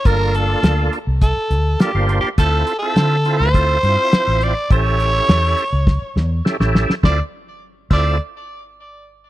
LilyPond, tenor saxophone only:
\new Staff \with { instrumentName = "Tenor saxophone" } { \time 4/4 \key d \minor \tempo 4 = 103 bes'8 a'4 r8 a'4 \tuplet 3/2 { g'4 g'8 } | \tuplet 3/2 { a'4 a'8~ a'4 c''8~ } c''4. d''8 | cis''2. r4 | d''8 r4 d''8 r2 | }